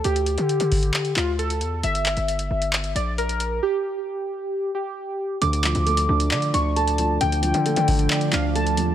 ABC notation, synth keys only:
X:1
M:4/4
L:1/8
Q:1/4=134
K:Dm
V:1 name="Synth keys"
G4- G F A2 | e4- e d B2 | G4- G G3 | d'4- d' ^c' a2 |
g4- g f a2 |]